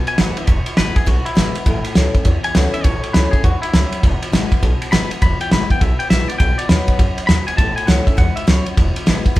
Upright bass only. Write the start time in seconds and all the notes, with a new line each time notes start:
0.18 G#1
0.37 muted upright bass stroke
0.48 E1
0.66 muted upright bass stroke
0.77 G#1
0.96 muted upright bass stroke
1.07 B1
1.26 muted upright bass stroke
1.37 G#1
1.55 muted upright bass stroke
1.66 A1
1.85 muted upright bass stroke
1.96 C#2
2.26 E2
2.45 muted upright bass stroke
2.55 C#2
2.74 muted upright bass stroke
2.85 A1
3.15 C#2
3.44 E2
3.62 muted upright bass stroke
3.73 C#2
3.92 muted upright bass stroke
4.03 E1
4.22 muted upright bass stroke
4.32 G#1
4.63 B1
4.81 muted upright bass stroke
4.92 G#1
5.10 muted upright bass stroke
5.22 E1
5.40 muted upright bass stroke
5.51 G#1
5.81 B1
6.10 A#1
6.40 B1
6.69 D#2
6.99 F#2
7.18 muted upright bass stroke
7.29 D#2
7.47 muted upright bass stroke
7.58 A1
7.88 C#2
8.18 E2
8.37 muted upright bass stroke
8.48 C#2
8.67 muted upright bass stroke
8.78 E1
8.97 muted upright bass stroke
9.07 G#1
9.26 muted upright bass stroke